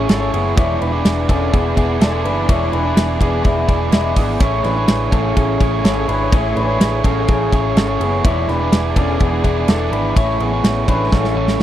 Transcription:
Already playing: string section A3 G#4 C#5
0.08 picked electric bass G#1, overdriven electric guitar C#4 E4 G#4 C#5, clean electric guitar C#4 A4, snare, ride
0.20 overdriven electric guitar E4 G#4 C#5
0.34 picked electric bass F#1, clean electric guitar B3 G#4, ride
0.55 picked electric bass E1, overdriven electric guitar E3 G#3 B3 E4 G#4 D5, string section E3 D4 G#4, clean electric guitar E4 C#5, kick, ride
0.81 picked electric bass E1, clean electric guitar D4 B4, ride
0.92 overdriven electric guitar B3 E4 G#4 D5
1.05 picked electric bass E1, snare, ride
1.28 picked electric bass E1, overdriven electric guitar B3 E4 G#4 D5, clean electric guitar C#4 A4, kick, ride
1.53 picked electric bass E1, clean electric guitar B3 G#4, kick, ride
1.76 picked electric bass E1, overdriven electric guitar B3 E4 G#4 D5, kick, ride
2.00 picked electric bass E1, overdriven electric guitar B3 E4 G#4 D5, clean electric guitar D4 A4, snare, ride
2.12 overdriven electric guitar B3 E4 G#4 D5
2.25 picked electric bass F#1, clean electric guitar D4 B4, ride
2.48 picked electric bass E1, overdriven electric guitar E3 G#3 B3 E4 G#4 D5, clean electric guitar E4 C#5, kick, ride
2.73 picked electric bass E1, clean electric guitar D4 B4, ride
2.83 overdriven electric guitar B3 E4 G#4 D5
2.97 picked electric bass E1, snare, ride
3.20 picked electric bass E1, overdriven electric guitar B3 E4 G#4 D5, clean electric guitar B3 G#4, kick, ride
3.44 picked electric bass E1, clean electric guitar G#3 E4, kick, ride
3.67 picked electric bass E1, overdriven electric guitar B3 E4 G#4 D5, kick, ride
3.91 picked electric bass E1, clean electric guitar G#3 E4, overdriven electric guitar B3 E4 G#4 D5, snare, ride
4.04 overdriven electric guitar B3 E4 G#4 D5
4.16 picked electric bass G#1, clean electric guitar B3 G#4, kick, open hi-hat, ride
4.40 picked electric bass A1, overdriven electric guitar A3 C#4 E4 G#4 C#5, string section A3 G#4 C#5, clean electric guitar E4 C#5, kick, hi-hat pedal, ride
4.64 picked electric bass A1, clean electric guitar D4 B4, snare, ride
4.76 overdriven electric guitar E4 G#4 C#5
4.88 picked electric bass A1, snare, ride
5.11 picked electric bass A1, overdriven electric guitar C#4 E4 G#4 C#5, clean electric guitar C#4 A4, kick, ride
5.36 picked electric bass A1, clean electric guitar C#4 G#4, kick, ride
5.60 picked electric bass A1, overdriven electric guitar C#4 E4 G#4 C#5, kick, ride
5.84 picked electric bass G#1, overdriven electric guitar C#4 E4 G#4 C#5, clean electric guitar C#4 A4, snare, ride
5.96 overdriven electric guitar E4 G#4 C#5
6.08 picked electric bass G#1, clean electric guitar D4 B4, ride
6.31 picked electric bass A1, overdriven electric guitar A3 C#4 E4 G#4 C#5, clean electric guitar E4 C#5, kick, ride
6.57 picked electric bass A1, clean electric guitar D4 B4, ride
6.68 overdriven electric guitar E4 G#4 C#5
6.80 picked electric bass A1, snare, ride
7.04 picked electric bass A1, overdriven electric guitar C#4 E4 G#4 C#5, clean electric guitar C#4 A4, kick, ride
7.28 picked electric bass A1, clean electric guitar C#4 G#4, kick, ride
7.52 picked electric bass A1, overdriven electric guitar C#4 E4 G#4 C#5, kick, ride
7.76 picked electric bass G#1, overdriven electric guitar C#4 E4 G#4 C#5, clean electric guitar C#4 A4, snare, ride
7.88 overdriven electric guitar E4 G#4 C#5
8.00 picked electric bass F#1, clean electric guitar B3 G#4, ride
8.24 picked electric bass E1, overdriven electric guitar E3 G#3 B3 E4 G#4 D5, string section E3 D4 G#4, clean electric guitar E4 C#5, kick, ride
8.48 picked electric bass E1, clean electric guitar D4 B4, snare, ride
8.60 overdriven electric guitar B3 E4 G#4 D5
8.72 picked electric bass E1, snare, ride
8.96 picked electric bass E1, overdriven electric guitar B3 E4 G#4 D5, clean electric guitar C#4 A4, kick, ride
9.20 picked electric bass E1, clean electric guitar B3 G#4, kick, ride
9.43 picked electric bass E1, overdriven electric guitar B3 E4 G#4 D5, kick, ride
9.67 picked electric bass E1, overdriven electric guitar B3 E4 G#4 D5, clean electric guitar D4 A4, snare, ride
9.79 overdriven electric guitar B3 E4 G#4 D5
9.92 picked electric bass G#1, clean electric guitar D4 B4, ride
10.16 picked electric bass A1, string section E3 A3 C#4, overdriven electric guitar A3 C#4 E4 G#4 C#5, clean electric guitar E4 C#5, kick, ride
10.40 picked electric bass A1, clean electric guitar B3 G#4, ride
10.52 overdriven electric guitar E4 G#4 C#5
10.64 picked electric bass A1, snare, ride
10.87 picked electric bass A1, overdriven electric guitar C#4 E4 G#4 C#5, clean electric guitar D4 B4, kick, ride
11.12 picked electric bass A1, clean electric guitar C#4 A4, kick, snare
11.24 snare
11.35 picked electric bass A1, overdriven electric guitar C#4 E4 G#4 C#5
11.48 snare
11.59 picked electric bass G#1, overdriven electric guitar C#4

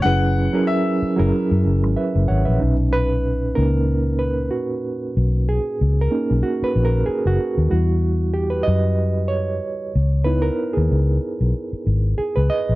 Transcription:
0.02 fingered electric bass F#1, reed electric piano F#3 C#4 E4 G#4 B4, grand piano F#5
0.53 reed electric piano F#3 C#4 E4 G#4 A#4
0.67 grand piano E5
1.02 muted fingered electric bass stroke
1.17 fingered electric bass F#1, reed electric piano F#3 C#4 E4 G#4 A#4
1.51 fingered electric bass F#2
1.65 fingered electric bass F#1
1.83 fingered electric bass G#1
1.96 reed electric piano B4 E5
2.15 fingered electric bass F#1
2.28 fingered electric bass G#1, reed electric piano C#5 F#5
2.45 fingered electric bass A#1, reed electric piano B4 E5
2.59 fingered electric bass B1, reed electric piano A#2 C#4 D#4
2.93 reed electric piano B4
3.55 fingered electric bass C#2, reed electric piano A#3 C#4 D#4 A#4
4.19 reed electric piano B4
4.51 reed electric piano F#4
5.17 fingered electric bass B1
5.49 reed electric piano G#4
5.81 fingered electric bass C#2
6.01 reed electric piano A#4
6.11 reed electric piano A#3 C#4 D#4
6.31 fingered electric bass B1
6.43 reed electric piano F#4
6.62 reed electric piano B4, muted fingered electric bass stroke
6.76 fingered electric bass A#1
6.85 reed electric piano A#4
7.06 reed electric piano G#4
7.26 fingered electric bass F#1, reed electric piano F#4
7.58 fingered electric bass D#2
7.70 fingered electric bass E2, reed electric piano G3 E4 F#4
8.34 reed electric piano G4
8.50 reed electric piano B4
8.63 reed electric piano D#5
8.68 fingered electric bass F#2
9.28 reed electric piano C#5
9.95 fingered electric bass C#2
10.24 reed electric piano B3 D#4 E4 B4
10.42 reed electric piano A#4
10.73 fingered electric bass D#2, reed electric piano G#4
10.91 fingered electric bass C#2
11.41 fingered electric bass B1
11.73 muted fingered electric bass stroke
11.87 fingered electric bass G#1
12.18 reed electric piano G#4, muted fingered electric bass stroke
12.36 fingered electric bass C#2, reed electric piano B4
12.50 reed electric piano D#5
12.69 fingered electric bass A#1

